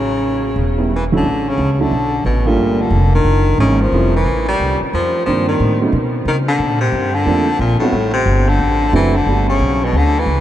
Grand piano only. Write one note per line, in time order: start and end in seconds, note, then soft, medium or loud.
0.78 0.90 G3 medium
0.78 0.90 B3 soft
0.78 0.90 C#4 medium
0.78 0.90 E4 medium
1.12 1.23 D2 medium
1.12 1.23 F#3 medium
1.12 1.24 A3 medium
1.12 1.24 C#4 medium
1.12 1.24 E4 medium
1.79 1.90 F#3 medium
1.79 1.91 A3 medium
1.79 1.91 C#4 medium
1.79 1.90 D4 medium
1.79 1.91 E4 medium
2.45 2.89 G3 medium
2.45 2.89 A3 medium
2.45 2.90 A#3 medium
2.45 2.90 D4 medium
2.45 2.90 F4 medium
3.60 3.78 E3 medium
3.60 3.78 G#3 medium
3.60 3.78 A#3 medium
3.60 3.78 C#4 medium
3.60 3.78 D#4 medium
3.92 4.11 F3 medium
3.92 4.12 G3 medium
3.92 4.11 A3 medium
3.92 4.12 C4 medium
3.92 4.12 E4 medium
5.26 5.76 D#3 medium
5.26 5.76 G3 soft
5.26 5.76 A#3 medium
5.26 5.77 C4 medium
5.26 5.77 D4 medium
5.81 5.92 F#3 medium
5.81 5.92 A3 medium
5.81 5.92 B3 medium
5.81 5.92 C#4 medium
5.81 5.93 D#4 medium
7.26 7.45 F3 medium
7.26 7.45 A3 medium
7.26 7.45 A#3 medium
7.26 7.46 C4 medium
7.26 7.46 D4 medium
7.81 7.92 G3 medium
7.81 7.92 A3 medium
7.81 7.92 B3 medium
7.81 7.93 C4 medium
7.81 7.93 F#4 medium
8.93 9.12 F#3 medium
8.93 9.12 A3 medium
8.93 9.12 C4 medium
8.93 9.12 D4 medium
8.93 9.12 E4 medium
9.28 9.46 G3 medium
9.28 9.46 A3 soft
9.28 9.46 B3 medium
9.28 9.46 D4 soft
9.28 9.47 F#4 medium